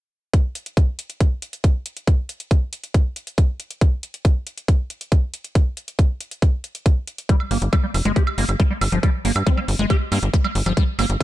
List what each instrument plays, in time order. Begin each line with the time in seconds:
0.34 kick, closed hi-hat
0.55 closed hi-hat
0.66 closed hi-hat
0.77 kick, closed hi-hat
0.99 closed hi-hat
1.10 closed hi-hat
1.20 kick, closed hi-hat
1.42 closed hi-hat
1.53 closed hi-hat
1.64 kick, closed hi-hat
1.86 closed hi-hat
1.97 closed hi-hat
2.07 kick, closed hi-hat
2.29 closed hi-hat
2.40 closed hi-hat
2.51 kick, closed hi-hat
2.73 closed hi-hat
2.84 closed hi-hat
2.94 kick, closed hi-hat
3.16 closed hi-hat
3.27 closed hi-hat
3.38 kick, closed hi-hat
3.60 closed hi-hat
3.71 closed hi-hat
3.81 kick, closed hi-hat
4.03 closed hi-hat
4.14 closed hi-hat
4.25 kick, closed hi-hat
4.47 closed hi-hat
4.57 closed hi-hat
4.68 kick, closed hi-hat
4.90 closed hi-hat
5.01 closed hi-hat
5.12 kick, closed hi-hat
5.34 closed hi-hat
5.44 closed hi-hat
5.55 kick, closed hi-hat
5.77 closed hi-hat
5.88 closed hi-hat
5.99 kick, closed hi-hat
6.20 closed hi-hat
6.31 closed hi-hat
6.42 kick, closed hi-hat
6.64 closed hi-hat
6.75 closed hi-hat
6.86 kick, closed hi-hat
7.07 closed hi-hat
7.18 closed hi-hat
7.29 acid bass G3, kick, closed hi-hat
7.40 high woodblock
7.51 analog synth bass G1, acid bass A#3, open hi-hat
7.62 analog synth bass G1, closed hi-hat
7.73 acid bass G3, kick, closed hi-hat, high woodblock
7.84 acid bass G3
7.94 analog synth bass F1, open hi-hat, high woodblock
8.05 analog synth bass G1, acid bass G#3, closed hi-hat
8.16 acid bass G4, kick, closed hi-hat
8.27 high woodblock
8.38 analog synth bass G1, acid bass A#3, open hi-hat
8.49 analog synth bass G1, closed hi-hat, high woodblock
8.60 acid bass G3, kick, closed hi-hat
8.71 acid bass G3
8.81 analog synth bass G1, open hi-hat, high woodblock
8.92 analog synth bass G1, acid bass F3, closed hi-hat
9.03 acid bass G3, kick, closed hi-hat, high woodblock
9.25 analog synth bass G1, acid bass A#3, open hi-hat
9.36 analog synth bass G2, closed hi-hat, high woodblock
9.47 acid bass G3, wobble bass C4, kick, closed hi-hat
9.57 acid bass G3, high woodblock
9.68 analog synth bass G1, open hi-hat
9.79 analog synth bass G1, acid bass G#3, closed hi-hat
9.90 acid bass G4, kick, closed hi-hat, high woodblock
10.12 analog synth bass G2, acid bass A#3, open hi-hat, high woodblock
10.23 analog synth bass G1, closed hi-hat
10.34 acid bass G3, kick, closed hi-hat
10.44 acid bass G3, high woodblock
10.55 analog synth bass G1, open hi-hat
10.66 analog synth bass G1, acid bass F3, closed hi-hat, high woodblock
10.77 acid bass G3, kick, closed hi-hat
10.99 analog synth bass G1, acid bass A#3, open hi-hat, high woodblock
11.10 analog synth bass G1, closed hi-hat